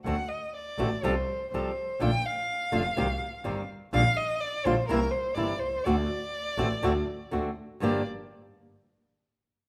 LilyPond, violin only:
\new Staff \with { instrumentName = "Violin" } { \time 4/4 \key g \minor \tempo 4 = 124 fis''8 ees''8 d''4 c''4 c''4 | g''8 f''2. r8 | f''8 ees''8 d''8 c''8 bes'8 c''8 d''8 c''8 | d''2. r4 |
d''8 r2. r8 | }